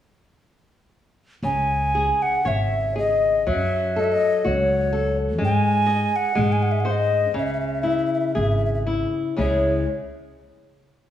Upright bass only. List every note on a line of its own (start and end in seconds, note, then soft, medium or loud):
1.43 2.09 C#2 medium
2.46 3.49 G#1 medium
3.47 4.11 F#2 medium
4.45 5.41 C#2 medium
5.41 6.03 G#2 medium
6.37 7.34 G#2 medium
7.34 8.00 C#2 medium
8.36 9.02 G#1 medium
9.38 9.85 C#2 medium